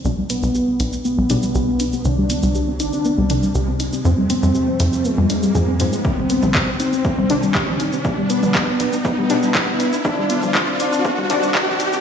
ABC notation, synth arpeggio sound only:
X:1
M:4/4
L:1/16
Q:1/4=120
K:Cm
V:1 name="Synth arpeggio sound"
=B, G, B, G, G B, D B, B, G, D G, G B, D B, | C G, =B, G, G C E C B, G, D G, G C E C | C G, =B, G, G C E C B, G, D G, A C E C | C G, =B, G, G C E C B, G, D G, G C E C |
=B, G, B, G, G B, D B, B, G, D G, G B, D B, | C G, =B, G, G C E C B, G, D G, G C E C |]